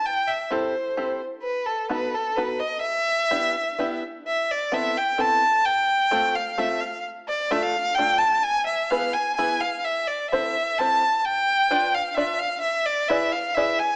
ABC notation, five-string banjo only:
X:1
M:3/4
L:1/8
Q:1/4=129
K:Em
V:1 name="Five-string banjo"
z2 [CEGA] z [CEGA] z | z2 [B,^DFA] z [B,DFA] z | z2 [B,DEG] z [B,DEG] z | [K:Am] z2 [B,CEA] z [B,CEA] z |
z2 [A,CFA] z [A,CFA] z | z2 [A,DFA] z [A,DFA] z | z2 [B,E^GB] z [B,EGB] z | z2 [CEAc] z [CEAc] z |
z2 [DFBd] z [DFBd] z | z2 [E^GBd] z [EGBd] z |]